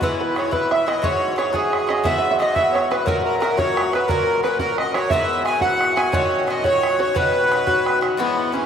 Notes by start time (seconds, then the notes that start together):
0.01 G#2 E3 B3 E4 B4 B5, bodhran
0.17 B4 C#5 B5
0.22 B4
0.35 G#2 E3 B3 C#5 C#6, bodhran
0.39 E4
0.51 G#2 E3 B3 E4 B4 B5, bodhran
0.71 E5 E6, bodhran
0.86 E3 B3 E4 D#5 D#6, bodhran
1.02 G#2 F#3 C#4 F#4 C#5 C#6, bodhran
1.36 G#2 F#3 C#4 F#4 C#5 C#6, bodhran
1.53 G#2 F#3 C#4 F#4 G#4 G#5, bodhran
1.73 bodhran
1.87 F#3 C#4 F#4 D#5, bodhran
2.04 G#2 E3 B3 F#4 E5 E6, bodhran
2.18 E5
2.31 E5
2.39 G#2 E3 B3 F#4 D#5 D#6, bodhran
2.54 G#2 E3 B3 F#4 E5 E6, bodhran
2.72 C#5 C#6, bodhran
2.89 B3 F#4 B4 B5, bodhran
2.94 E3
3.05 A#2 F#3 C#4 F#4 A#4 A#5, bodhran
3.24 A#4 A#5
3.39 A#2 F#3 A#4 B4, bodhran
3.43 C#4 F#4
3.57 A#2 F#3 C#4 F#4 C#5 C#6, bodhran
3.77 bodhran
3.92 F#3 C#4 F#4 B4 B5, bodhran
4.08 A#2 F#3 C#4 F#4 A#4 A#5, bodhran
4.42 A#2 F#3 C#4 B4 B5, bodhran
4.47 F#4
4.59 A#2 F#3 C#4 F#4 A#4 A#5, bodhran
4.78 D#5 D#6, bodhran
4.94 F#3 C#4 F#4 C#5 C#6, bodhran
5.10 G#2 E3 B3 F#4 E5 E6, bodhran
5.45 G#2 E3 B3 F#4 G#5, bodhran
5.61 G#2 E3 B3 F#4 F#5 F#6, bodhran
5.81 bodhran
5.96 E3 B3 F#4 G#5, bodhran
6.12 A#2 D#3 C#4 F#4 C#5 C#6, bodhran
6.47 A#2 D#3 C#4 F#4 D#5, bodhran
6.64 A#2 D#3 C#4 F#4 C#5 C#6, bodhran
6.83 bodhran
6.99 D#3 C#4 F#4 C#5 C#6
7.15 B2 D#3 C#4 F#4 B4 B5, bodhran
7.49 B2 D#3 C#4 F#4, bodhran
7.67 B2 D#3 C#4 F#4, bodhran
7.86 bodhran
8.01 D#3 C#4 F#4, bodhran
8.17 G#2 E3 B3 E4 B5
8.52 G#2 E3 B3 C#4 E4